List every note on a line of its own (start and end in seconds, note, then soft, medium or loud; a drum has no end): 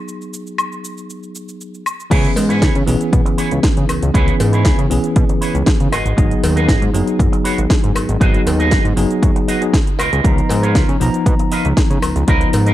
0.00 1.82 F#3 medium
0.00 1.83 B3 medium
0.00 1.83 D#4 medium
0.00 1.83 G#4 medium
0.08 cabasa soft
0.22 cabasa soft
0.34 cabasa medium
0.47 cabasa soft
0.58 cabasa soft
0.58 high woodblock medium
0.72 cabasa soft
0.85 cabasa medium
0.98 cabasa soft
1.10 cabasa soft
1.23 cabasa soft
1.35 cabasa medium
1.49 cabasa soft
1.61 cabasa soft
1.74 cabasa soft
1.86 cabasa medium
1.86 high woodblock medium
2.00 cabasa soft
2.10 2.28 C#2 loud
2.10 2.84 E3 medium
2.10 2.84 B3 medium
2.10 2.85 C#4 medium
2.10 2.30 E4 loud
2.10 2.30 G#4 loud
2.10 2.85 G#4 loud
2.10 2.30 B4 loud
2.10 2.30 C#5 loud
2.10 kick loud
2.10 closed hi-hat loud
2.10 crash loud
2.10 cabasa soft
2.25 closed hi-hat soft
2.25 cabasa soft
2.36 2.64 G#2 loud
2.36 open hi-hat loud
2.36 cowbell medium
2.36 cabasa medium
2.49 2.75 E4 loud
2.49 2.75 G#4 medium
2.49 2.75 B4 medium
2.49 2.75 C#5 loud
2.49 closed hi-hat soft
2.49 cabasa soft
2.62 2.70 C#2 medium
2.62 kick loud
2.62 snare loud
2.62 closed hi-hat medium
2.62 cabasa soft
2.75 2.84 C#3 loud
2.75 closed hi-hat soft
2.75 cabasa soft
2.87 2.96 B1 loud
2.87 4.11 E3 loud
2.87 4.12 B3 medium
2.87 4.12 C#4 medium
2.87 4.12 G#4 loud
2.87 open hi-hat medium
2.87 cabasa medium
3.00 muted clean electric guitar stroke soft
3.00 closed hi-hat soft
3.00 cabasa soft
3.13 3.21 B2 loud
3.13 kick loud
3.13 closed hi-hat loud
3.13 cabasa soft
3.25 muted clean electric guitar stroke loud
3.25 closed hi-hat soft
3.25 cabasa soft
3.38 3.51 E4 medium
3.38 3.51 G#4 medium
3.38 3.51 B4 medium
3.38 3.51 C#5 medium
3.38 open hi-hat loud
3.38 cabasa medium
3.51 3.60 C#2 loud
3.51 closed hi-hat soft
3.51 cabasa soft
3.63 muted clean electric guitar stroke medium
3.63 kick loud
3.63 snare loud
3.63 closed hi-hat loud
3.63 cabasa soft
3.77 3.85 C#3 medium
3.77 muted clean electric guitar stroke soft
3.77 closed hi-hat soft
3.77 cabasa soft
3.89 4.00 C#2 soft
3.89 open hi-hat medium
3.89 cowbell medium
3.89 cabasa medium
3.89 high woodblock medium
4.02 4.11 C#2 medium
4.02 closed hi-hat soft
4.02 cabasa soft
4.14 4.31 C#2 loud
4.14 4.87 E3 medium
4.14 4.88 B3 medium
4.14 4.88 C#4 medium
4.14 4.34 E4 loud
4.14 4.34 G#4 loud
4.14 4.89 G#4 loud
4.14 4.34 B4 loud
4.14 4.34 C#5 loud
4.14 kick loud
4.14 closed hi-hat loud
4.14 cabasa soft
4.28 closed hi-hat soft
4.28 cabasa soft
4.40 4.67 G#2 loud
4.40 open hi-hat loud
4.40 cowbell medium
4.40 cabasa medium
4.53 4.79 E4 medium
4.53 4.79 G#4 medium
4.53 4.79 B4 medium
4.53 4.79 C#5 medium
4.53 closed hi-hat soft
4.53 cabasa soft
4.65 4.74 C#2 medium
4.65 kick loud
4.65 snare loud
4.65 closed hi-hat loud
4.65 cabasa soft
4.79 4.87 C#3 loud
4.79 closed hi-hat soft
4.79 cabasa soft
4.90 4.99 B1 loud
4.90 5.91 E3 medium
4.90 5.91 B3 medium
4.90 5.91 C#4 medium
4.90 5.92 G#4 loud
4.90 open hi-hat medium
4.90 cabasa medium
5.04 muted clean electric guitar stroke soft
5.04 closed hi-hat soft
5.04 cabasa soft
5.16 5.25 B2 loud
5.16 kick loud
5.16 closed hi-hat medium
5.16 cabasa soft
5.29 muted clean electric guitar stroke loud
5.29 closed hi-hat soft
5.29 cabasa soft
5.41 5.55 E4 medium
5.41 5.55 G#4 medium
5.41 5.55 B4 medium
5.41 5.55 C#5 medium
5.41 open hi-hat loud
5.41 cabasa medium
5.55 5.63 C#2 loud
5.55 closed hi-hat soft
5.55 cabasa soft
5.66 muted clean electric guitar stroke medium
5.66 kick loud
5.66 snare loud
5.66 closed hi-hat medium
5.66 cabasa soft
5.80 5.88 C#3 medium
5.80 muted clean electric guitar stroke soft
5.80 closed hi-hat soft
5.80 cabasa soft
5.92 6.03 G#1 soft
5.92 6.43 F#4 medium
5.92 6.43 G#4 medium
5.92 6.43 B4 medium
5.92 6.43 D#5 loud
5.92 open hi-hat medium
5.92 cowbell medium
5.92 cabasa medium
5.92 high woodblock medium
6.06 6.14 G#1 medium
6.06 closed hi-hat soft
6.06 cabasa soft
6.17 6.35 G#1 loud
6.17 6.91 F#3 loud
6.17 6.91 B3 medium
6.17 6.91 D#4 medium
6.17 6.92 G#4 loud
6.17 kick loud
6.17 closed hi-hat medium
6.17 cabasa soft
6.31 closed hi-hat soft
6.31 cabasa soft
6.43 6.70 D#2 loud
6.43 open hi-hat loud
6.43 cowbell loud
6.43 cabasa medium
6.56 6.82 F#4 medium
6.56 6.82 G#4 medium
6.56 6.82 B4 medium
6.56 6.82 D#5 loud
6.56 closed hi-hat soft
6.56 cabasa soft
6.68 6.77 G#1 medium
6.68 kick loud
6.68 snare loud
6.68 closed hi-hat medium
6.68 cabasa soft
6.82 6.90 G#2 medium
6.82 closed hi-hat soft
6.82 cabasa soft
6.94 7.03 F#1 loud
6.94 8.18 F#3 loud
6.94 8.18 B3 medium
6.94 8.19 D#4 medium
6.94 8.19 G#4 loud
6.94 open hi-hat medium
6.94 cabasa medium
7.07 muted clean electric guitar stroke soft
7.07 closed hi-hat soft
7.07 cabasa soft
7.19 7.28 F#2 loud
7.19 kick loud
7.19 closed hi-hat medium
7.19 cabasa soft
7.32 muted clean electric guitar stroke loud
7.32 closed hi-hat soft
7.32 cabasa soft
7.44 7.58 F#4 medium
7.44 7.58 G#4 medium
7.44 7.58 B4 medium
7.44 7.58 C#5 medium
7.44 open hi-hat loud
7.44 cabasa medium
7.58 7.67 G#1 loud
7.58 closed hi-hat soft
7.58 cabasa soft
7.70 muted clean electric guitar stroke medium
7.70 kick loud
7.70 snare loud
7.70 closed hi-hat medium
7.70 cabasa soft
7.83 7.92 G#2 medium
7.83 muted clean electric guitar stroke soft
7.83 closed hi-hat soft
7.83 cabasa soft
7.95 8.07 G#1 soft
7.95 open hi-hat medium
7.95 cowbell medium
7.95 cabasa medium
7.95 high woodblock medium
8.09 8.17 G#1 loud
8.09 closed hi-hat soft
8.09 cabasa soft
8.20 8.38 G#1 loud
8.20 8.94 F#3 loud
8.20 8.95 B3 medium
8.20 8.95 D#4 medium
8.20 8.40 F#4 loud
8.20 8.40 G#4 medium
8.20 8.95 G#4 loud
8.20 8.40 B4 loud
8.20 8.40 D#5 loud
8.20 kick loud
8.20 closed hi-hat medium
8.20 cabasa soft
8.34 closed hi-hat soft
8.34 cabasa soft
8.46 8.73 D#2 loud
8.46 open hi-hat loud
8.46 cowbell medium
8.46 cabasa medium
8.59 8.85 F#4 medium
8.59 8.85 G#4 medium
8.59 8.85 B4 medium
8.59 8.85 D#5 loud
8.59 closed hi-hat soft
8.59 cabasa soft
8.71 8.80 G#1 medium
8.71 kick loud
8.71 snare loud
8.71 closed hi-hat medium
8.71 cabasa soft
8.85 8.93 G#2 medium
8.85 closed hi-hat soft
8.85 cabasa soft
8.96 9.06 F#1 loud
8.96 9.58 F#3 loud
8.96 9.59 B3 medium
8.96 9.59 D#4 medium
8.96 9.59 G#4 loud
8.96 open hi-hat medium
8.96 cabasa medium
9.10 muted clean electric guitar stroke soft
9.10 closed hi-hat soft
9.10 cabasa soft
9.22 9.31 F#2 loud
9.22 kick loud
9.22 closed hi-hat medium
9.22 cabasa soft
9.36 muted clean electric guitar stroke loud
9.36 closed hi-hat soft
9.36 cabasa soft
9.48 9.61 F#4 medium
9.48 9.62 G#4 medium
9.48 9.62 B4 medium
9.48 9.62 D#5 loud
9.48 open hi-hat loud
9.48 cabasa medium
9.61 9.73 F#3 medium
9.61 9.73 B3 medium
9.61 9.73 D#4 medium
9.61 9.73 G#4 loud
9.61 closed hi-hat soft
9.61 cabasa soft
9.73 muted clean electric guitar stroke medium
9.73 kick loud
9.73 snare loud
9.73 closed hi-hat medium
9.73 cabasa soft
9.87 muted clean electric guitar stroke soft
9.87 closed hi-hat soft
9.87 cabasa soft
9.99 10.10 C#2 soft
9.99 10.50 F4 medium
9.99 10.50 A#4 medium
9.99 10.50 B4 medium
9.99 10.50 D#5 loud
9.99 open hi-hat medium
9.99 cowbell medium
9.99 cabasa medium
9.99 high woodblock medium
10.13 10.21 C#2 medium
10.13 closed hi-hat soft
10.13 cabasa soft
10.24 10.42 C#2 loud
10.24 10.98 F3 medium
10.24 10.98 B3 medium
10.24 10.98 D#4 medium
10.24 10.99 A#5 loud
10.24 kick loud
10.24 closed hi-hat medium
10.24 cabasa soft
10.38 closed hi-hat soft
10.38 cabasa soft
10.49 10.77 G#2 loud
10.49 open hi-hat loud
10.49 cowbell medium
10.49 cabasa medium
10.63 10.89 F4 medium
10.63 10.89 A#4 medium
10.63 10.89 B4 medium
10.63 10.89 C#5 medium
10.63 closed hi-hat soft
10.63 cabasa soft
10.75 10.84 C#2 medium
10.75 kick loud
10.75 snare loud
10.75 closed hi-hat medium
10.75 cabasa soft
10.89 10.97 C#3 loud
10.89 closed hi-hat soft
10.89 cabasa soft
11.00 11.10 B1 loud
11.00 12.25 F3 loud
11.00 12.25 B3 medium
11.00 12.25 D#4 medium
11.00 12.26 A#5 loud
11.00 open hi-hat medium
11.00 cabasa medium
11.14 muted clean electric guitar stroke soft
11.14 closed hi-hat soft
11.14 cabasa soft
11.26 11.35 B2 loud
11.26 kick loud
11.26 closed hi-hat medium
11.26 cabasa soft
11.39 muted clean electric guitar stroke loud
11.39 closed hi-hat soft
11.39 cabasa soft
11.52 11.65 F4 medium
11.52 11.65 A#4 medium
11.52 11.65 B4 medium
11.52 11.65 D#5 medium
11.52 open hi-hat loud
11.52 cabasa medium
11.65 11.73 C#2 loud
11.65 closed hi-hat soft
11.65 cabasa soft
11.77 muted clean electric guitar stroke loud
11.77 kick loud
11.77 snare loud
11.77 closed hi-hat medium
11.77 cabasa soft
11.90 11.99 C#3 medium
11.90 muted clean electric guitar stroke soft
11.90 closed hi-hat soft
11.90 cabasa soft
12.02 12.13 C#2 soft
12.02 open hi-hat medium
12.02 cowbell medium
12.02 cabasa medium
12.02 high woodblock medium
12.16 12.24 C#2 medium
12.16 closed hi-hat soft
12.16 cabasa soft
12.27 12.45 C#2 loud
12.27 12.74 F3 medium
12.27 12.74 B3 medium
12.27 12.74 D#4 medium
12.27 12.48 F4 loud
12.27 12.48 A#4 loud
12.27 12.48 B4 loud
12.27 12.48 D#5 loud
12.27 12.74 A#5 loud
12.27 kick loud
12.27 closed hi-hat medium
12.27 cabasa soft
12.41 closed hi-hat soft
12.41 cabasa soft
12.53 12.74 G#2 loud
12.53 open hi-hat loud
12.53 cowbell medium
12.53 cabasa medium
12.66 12.74 F4 medium
12.66 12.74 A#4 medium
12.66 12.74 B4 medium
12.66 12.74 D#5 loud
12.66 closed hi-hat soft
12.66 cabasa soft